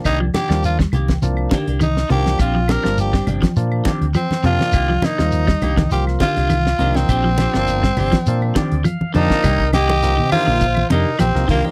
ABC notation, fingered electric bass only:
X:1
M:4/4
L:1/16
Q:"Swing 16ths" 1/4=102
K:Bbmix
V:1 name="Fingered electric bass" clef=bass
C,,2 z E,,3 C,,2 C,,2 z C,,3 C,,2 | B,,,3 G,,,3 G,,, z B,,2 z D,, z2 F,, z | C,,2 z E,,3 C,,2 C,,2 z C,,3 C,,2 | B,,,3 G,,,3 G,,, z B,,2 z D,, z2 F,, z |
C,,4- C,, C, z B,,,3 F,, z B,,, C,, C,, z |]